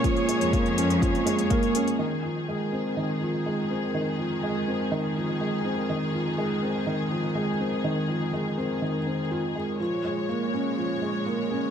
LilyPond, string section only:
\new Staff \with { instrumentName = "String section" } { \time 4/4 \key bes \dorian \tempo 4 = 123 <bes aes' des''>1 | <f, ees aes'>1~ | <f, ees aes'>1~ | <f, ees aes'>1~ |
<f, ees aes'>1 | <bes, aes des''>1 | }